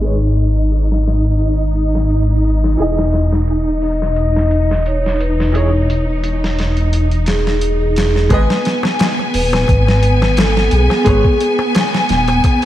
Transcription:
0.00 2.76 G#1 medium
0.00 0.17 G#3 medium
0.00 8.32 D#4 medium
0.00 0.18 G#4 medium
0.00 8.32 D#5 medium
0.00 closed hi-hat medium
0.04 0.18 B4 medium
0.04 0.19 C#5 medium
0.37 closed hi-hat medium
0.72 closed hi-hat medium
0.92 snare soft
1.06 snare soft
1.06 closed hi-hat medium
1.25 closed hi-hat soft
1.41 closed hi-hat medium
1.59 closed hi-hat soft
1.76 closed hi-hat medium
1.95 snare soft
2.09 closed hi-hat medium
2.44 closed hi-hat medium
2.64 snare soft
2.77 8.28 E1 medium
2.77 3.01 E3 medium
2.77 3.02 E4 medium
2.77 3.02 G#4 medium
2.77 3.27 D#5 medium
2.77 closed hi-hat medium
2.82 3.03 D#5 medium
2.99 snare soft
3.12 snare soft
3.12 closed hi-hat medium
3.33 snare soft
3.48 closed hi-hat medium
3.82 4.30 D#5 medium
3.82 open hi-hat medium
4.02 snare soft
4.16 closed hi-hat medium
4.36 4.82 D#5 medium
4.36 snare soft
4.51 closed hi-hat medium
4.71 snare soft
4.86 5.18 C#5 medium
4.86 closed hi-hat medium
5.06 snare soft
5.20 5.52 B4 medium
5.20 closed hi-hat medium
5.40 snare soft
5.52 5.68 E3 medium
5.52 5.69 E4 medium
5.52 5.70 G#4 medium
5.52 6.02 C#5 medium
5.52 closed hi-hat medium
5.57 5.71 C#5 medium
5.90 closed hi-hat medium
6.24 closed hi-hat medium
6.44 snare soft
6.59 snare soft
6.59 closed hi-hat medium
6.77 closed hi-hat soft
6.93 closed hi-hat medium
7.11 closed hi-hat soft
7.26 7.75 G#4 medium
7.26 snare medium
7.26 closed hi-hat medium
7.47 snare soft
7.61 closed hi-hat medium
7.80 8.26 G#4 medium
7.96 snare medium
7.96 closed hi-hat medium
8.16 snare soft
8.29 8.47 G#1 loud
8.29 8.53 G#3 medium
8.29 12.65 B3 medium
8.29 8.54 G#4 medium
8.29 8.79 B4 medium
8.29 8.55 B4 medium
8.29 12.65 G#5 medium
8.29 kick loud
8.29 closed hi-hat medium
8.29 darbuka tek medium
8.34 8.55 D#5 medium
8.50 snare medium
8.50 darbuka tek soft
8.65 snare soft
8.65 closed hi-hat medium
8.83 snare medium
8.83 darbuka tek medium
8.99 snare loud
8.99 closed hi-hat medium
8.99 darbuka tek medium
9.19 darbuka tek soft
9.34 9.65 D#1 loud
9.34 9.82 B4 loud
9.34 open hi-hat medium
9.53 snare soft
9.53 darbuka tek medium
9.68 10.69 G#1 medium
9.68 kick loud
9.68 closed hi-hat medium
9.68 darbuka tek medium
9.87 10.33 B4 medium
9.87 snare medium
9.87 darbuka tek soft
10.03 closed hi-hat medium
10.22 snare soft
10.22 darbuka tek medium
10.37 10.69 A4 medium
10.37 snare loud
10.37 closed hi-hat medium
10.37 darbuka tek medium
10.57 snare soft
10.57 darbuka tek soft
10.71 10.89 B1 medium
10.71 11.04 G#4 medium
10.71 closed hi-hat medium
10.90 snare soft
10.90 darbuka tek medium
11.04 11.23 G#1 medium
11.04 11.20 G#3 medium
11.04 11.21 G#4 medium
11.04 11.54 G#4 medium
11.04 11.22 B4 medium
11.04 kick loud
11.04 closed hi-hat medium
11.04 darbuka tek medium
11.09 11.23 C#5 medium
11.25 kick loud
11.25 darbuka tek soft
11.40 closed hi-hat medium
11.59 darbuka tek medium
11.75 snare loud
11.75 closed hi-hat medium
11.75 darbuka tek medium
11.94 snare medium
11.94 darbuka tek soft
12.09 12.41 D#1 medium
12.09 snare soft
12.09 closed hi-hat medium
12.28 closed hi-hat soft
12.28 darbuka tek medium
12.44 kick loud
12.44 closed hi-hat medium
12.44 darbuka tek medium

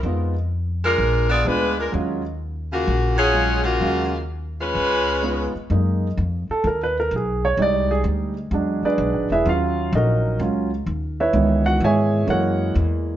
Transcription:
0.03 0.94 F2 medium
0.03 0.33 G#3 soft
0.03 0.33 B3 soft
0.03 0.33 D#4 soft
0.03 0.33 F4 medium
0.84 1.27 G#3 medium
0.84 1.27 D4 medium
0.84 1.27 F4 medium
0.84 1.28 A#4 medium
0.98 1.42 A#1 medium
1.29 1.44 B3 medium
1.29 1.45 F4 medium
1.29 1.44 G#4 medium
1.29 1.45 D5 medium
1.44 1.90 D2 medium
1.44 1.74 G#3 medium
1.44 1.78 G#3 medium
1.44 1.74 B3 medium
1.44 1.74 D4 soft
1.44 1.77 D4 medium
1.44 1.77 F4 medium
1.44 1.74 F4 medium
1.44 1.78 B4 medium
1.78 1.93 G#3 medium
1.78 1.92 D4 medium
1.78 1.93 F4 medium
1.78 1.93 A#4 medium
1.92 2.83 D#2 medium
1.92 2.21 F#3 medium
1.92 2.21 G#3 medium
1.92 2.21 C#4 medium
1.92 2.22 F4 medium
2.72 3.16 C#3 medium
2.72 3.16 A#3 medium
2.72 3.16 F4 medium
2.72 3.16 F#4 medium
2.87 3.77 A#1 medium
3.17 3.62 F#3 medium
3.17 3.62 C#4 medium
3.17 3.62 F4 medium
3.17 3.62 G#4 loud
3.33 3.62 F#3 medium
3.33 3.62 G#3 soft
3.33 3.63 C#4 soft
3.33 3.63 F4 medium
3.63 4.24 C#3 medium
3.63 4.23 A#3 medium
3.63 4.23 F4 medium
3.63 4.24 F#4 medium
3.81 4.71 D#2 medium
3.81 4.09 F#3 medium
3.81 4.10 G#3 soft
3.81 4.10 C#4 soft
3.81 4.10 F4 medium
4.59 5.50 G#3 medium
4.59 5.50 C#4 medium
4.59 5.50 F4 medium
4.59 5.50 B4 loud
4.75 5.50 C#2 medium
5.22 5.51 G#3 soft
5.22 5.51 B3 soft
5.22 5.51 D#4 soft
5.22 5.52 F4 soft
5.55 muted upright bass stroke soft
5.70 6.15 F#2 medium
5.70 6.06 G#3 soft
5.70 6.07 A#3 soft
5.70 6.07 D#4 soft
6.17 6.46 F2 medium
6.49 6.65 A4 medium
6.49 muted upright bass stroke soft
6.64 7.10 D#2 medium
6.64 6.81 A#4 medium
6.83 6.97 B4 medium
7.00 7.13 A#4 medium
7.11 7.57 B1 medium
7.16 7.44 G#4 medium
7.45 7.59 C#5 medium
7.57 8.03 C2 medium
7.57 8.33 G3 soft
7.57 8.33 G#3 soft
7.57 8.34 D#4 medium
7.62 7.91 D5 medium
7.91 8.00 G#4 medium
8.04 8.50 D2 medium
8.51 8.81 E2 medium
8.51 9.27 F#3 soft
8.51 9.28 G#3 soft
8.51 8.84 D4 medium
8.83 9.28 D4 medium
8.83 9.28 G#4 medium
8.83 9.29 B4 medium
8.83 9.28 D5 medium
8.83 muted upright bass stroke soft
8.98 9.13 B1 medium
9.13 9.29 G#1 medium
9.30 9.45 E1 medium
9.30 9.47 E4 medium
9.30 9.47 G#4 medium
9.30 9.47 B4 medium
9.30 9.47 E5 medium
9.45 9.92 D#2 medium
9.45 10.39 F#3 soft
9.45 10.39 C#4 soft
9.45 9.92 F4 medium
9.45 9.92 F5 medium
9.93 10.39 A#1 loud
9.93 10.39 D#4 medium
9.93 10.39 A#4 medium
9.93 10.38 D#5 medium
9.97 10.39 F#4 soft
10.40 10.86 C#2 medium
10.40 10.69 F#3 soft
10.40 10.69 C#4 soft
10.40 10.70 F4 soft
10.86 11.33 D#2 medium
11.20 11.64 E4 medium
11.20 11.64 B4 medium
11.20 11.64 C#5 medium
11.20 11.64 E5 medium
11.33 11.80 C#2 medium
11.33 12.26 D#3 medium
11.33 12.25 E3 soft
11.33 12.25 B3 soft
11.66 11.82 F#4 medium
11.66 11.81 F#5 medium
11.80 12.27 G#2 medium
11.80 12.27 E5 medium
11.84 12.28 G#4 medium
11.84 12.27 C#5 medium
11.84 12.27 G#5 medium
12.27 12.74 F#2 medium
12.27 13.17 E3 medium
12.27 13.17 G#3 soft
12.27 13.17 A#3 medium
12.27 12.74 F#4 medium
12.27 12.74 A#4 medium
12.27 12.73 C#5 medium
12.27 12.74 F#5 medium
12.75 13.17 E2 medium

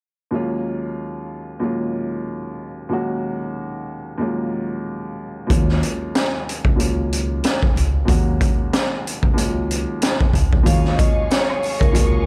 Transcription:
0.31 1.36 D#2 medium
0.31 1.36 F#3 medium
0.31 1.37 G#3 medium
0.31 1.37 A#3 medium
0.31 1.37 C#4 medium
0.35 1.38 F4 medium
1.60 2.65 D#2 medium
1.60 2.65 F#3 medium
1.60 2.66 G#3 medium
1.60 2.66 A#3 medium
1.60 2.66 C#4 medium
1.64 2.67 F4 medium
2.89 3.94 D#2 medium
2.89 3.94 F#3 medium
2.89 3.95 G#3 medium
2.89 3.95 A#3 medium
2.89 3.96 C#4 medium
2.93 3.96 F#4 medium
4.18 5.23 D#2 medium
4.18 4.27 F3 medium
4.18 5.24 G#3 medium
4.18 5.24 A#3 medium
4.18 5.24 C#4 medium
4.22 5.26 F#3 medium
4.22 5.25 F4 medium
5.47 6.52 D#2 medium
5.47 5.80 D#2 loud
5.47 6.52 F#3 medium
5.47 6.53 G#3 medium
5.47 6.53 A#3 medium
5.47 6.53 C#4 medium
5.47 kick loud
5.47 closed hi-hat medium
5.51 6.54 F4 medium
5.69 snare soft
5.83 closed hi-hat medium
6.15 snare loud
6.15 closed hi-hat medium
6.49 closed hi-hat medium
6.65 7.39 C#2 medium
6.65 kick medium
6.76 7.81 D#2 medium
6.76 7.81 F#3 medium
6.76 7.82 G#3 medium
6.76 7.82 A#3 medium
6.76 7.82 C#4 medium
6.80 7.83 F4 medium
6.80 closed hi-hat loud
7.12 closed hi-hat medium
7.44 snare loud
7.44 closed hi-hat medium
7.63 kick loud
7.76 8.05 C#2 medium
7.76 closed hi-hat medium
8.05 9.10 D#2 medium
8.05 8.38 D#2 loud
8.05 9.10 F#3 medium
8.05 9.11 G#3 medium
8.05 9.11 A#3 medium
8.05 9.12 C#4 medium
8.05 kick loud
8.05 closed hi-hat medium
8.09 9.12 F#4 loud
8.41 kick loud
8.41 closed hi-hat medium
8.73 snare loud
8.73 closed hi-hat medium
9.07 closed hi-hat medium
9.23 9.84 C#2 medium
9.23 kick medium
9.34 10.39 D#2 medium
9.34 9.43 F3 medium
9.34 10.40 G#3 medium
9.34 10.40 A#3 medium
9.34 10.41 C#4 medium
9.34 closed hi-hat loud
9.38 10.43 F#3 medium
9.38 10.41 F4 medium
9.71 closed hi-hat medium
10.02 snare loud
10.02 closed hi-hat medium
10.21 kick loud
10.33 10.63 C#2 medium
10.33 kick medium
10.33 closed hi-hat medium
10.53 kick loud
10.63 11.68 D#2 medium
10.63 10.96 D#2 loud
10.63 11.68 F#3 medium
10.63 11.69 G#3 medium
10.63 11.69 A#3 medium
10.63 11.70 C#4 medium
10.63 12.26 G#4 medium
10.63 12.26 F5 medium
10.63 10.95 F5 loud
10.63 12.26 G#5 medium
10.63 12.26 C#6 medium
10.63 kick loud
10.63 closed hi-hat medium
10.63 maracas medium
10.67 11.70 F4 loud
10.85 snare soft
10.96 11.26 D#5 medium
10.96 kick loud
10.96 closed hi-hat medium
10.96 maracas soft
11.31 11.78 C#5 medium
11.31 snare loud
11.31 closed hi-hat medium
11.31 maracas medium
11.50 high woodblock medium
11.63 open hi-hat medium
11.63 maracas medium
11.80 12.26 C#2 medium
11.80 12.26 A#4 medium
11.80 kick medium
11.80 closed hi-hat soft
11.92 12.26 D#2 medium
11.92 12.26 F#3 medium
11.92 12.26 G#3 medium
11.92 12.26 A#3 medium
11.92 12.26 C#4 medium
11.92 kick loud
11.92 closed hi-hat loud
11.92 maracas medium
11.96 12.26 F4 medium

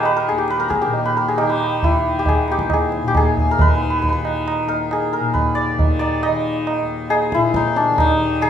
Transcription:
0.00 0.31 D#2 medium
0.00 0.87 A#2 medium
0.00 1.41 D#3 medium
0.00 0.35 G4 medium
0.00 0.11 A#4 medium
0.00 1.56 D#5 loud
0.00 tabla na medium
0.05 0.22 B4 medium
0.16 0.56 A#4 medium
0.29 2.49 D#2 medium
0.29 0.44 G#4 medium
0.38 0.76 G4 medium
0.48 0.66 B4 medium
0.48 tabla te medium
0.60 0.68 A#4 medium
0.60 tabla te medium
0.68 0.88 G#4 medium
0.68 1.11 A#4 medium
0.68 tabla ke medium
0.82 1.34 G4 medium
0.82 tabla te medium
0.87 3.02 A#2 medium
0.94 tabla tin medium
1.05 1.23 B4 medium
1.17 1.56 A#4 medium
1.28 1.44 G#4 medium
1.38 1.95 D#3 medium
1.38 2.18 G4 medium
1.38 tabla na medium
1.50 3.57 B4 medium
1.60 tabla na medium
1.83 5.31 E4 medium
1.83 tabla tin medium
1.83 tabla ge medium
1.95 3.58 D#3 medium
2.19 2.34 G4 medium
2.26 2.57 G#4 medium
2.26 tabla tin medium
2.26 tabla ge medium
2.48 4.67 D#2 medium
2.48 2.79 G4 medium
2.48 tabla na medium
2.59 tabla ke medium
2.70 3.14 G#4 medium
2.70 tabla na medium
2.70 tabla ge medium
2.92 tabla te medium
3.03 5.20 A#2 medium
3.08 3.23 G4 medium
3.15 4.92 G#4 medium
3.15 tabla na medium
3.15 tabla ge medium
3.37 tabla ge medium
3.51 3.67 A#4 medium
3.58 4.14 D#3 medium
3.58 3.68 B4 loud
3.58 tabla tin loud
3.58 tabla ge loud
3.68 3.74 B4 medium
3.75 3.82 B4 medium
3.82 3.90 B4 medium
3.90 3.98 B4 medium
3.98 4.02 B4 medium
3.98 4.08 B4 medium
4.04 tabla tin medium
4.04 tabla ge medium
4.09 4.12 B4 medium
4.09 4.74 B4 medium
4.14 5.74 D#3 medium
4.25 tabla na medium
4.48 tabla na medium
4.67 6.82 D#2 medium
4.67 5.12 A#4 medium
4.67 tabla na medium
4.91 7.10 G#4 medium
4.91 tabla na medium
5.13 5.40 A#4 medium
5.20 7.35 A#2 medium
5.34 8.06 B4 medium
5.34 tabla tin medium
5.34 tabla ge medium
5.55 5.99 D5 loud
5.74 6.29 D#3 medium
5.79 tabla tin medium
5.79 tabla ge medium
5.99 6.29 D5 loud
5.99 tabla na medium
6.23 7.40 D#5 loud
6.23 tabla na medium
6.29 7.91 D#3 medium
6.67 tabla na medium
6.82 8.50 D#2 medium
7.10 8.42 G#4 loud
7.10 tabla na medium
7.32 8.50 A#2 medium
7.32 7.62 E4 loud
7.32 tabla ke medium
7.54 7.83 D#4 loud
7.54 tabla ke medium
7.76 8.06 D4 medium
7.76 tabla te medium
7.91 8.44 D#3 medium
7.98 8.50 D#4 medium
7.98 tabla na loud
7.98 tabla ge loud
8.42 8.50 D#3 medium
8.42 8.50 G#4 loud
8.42 tabla na medium

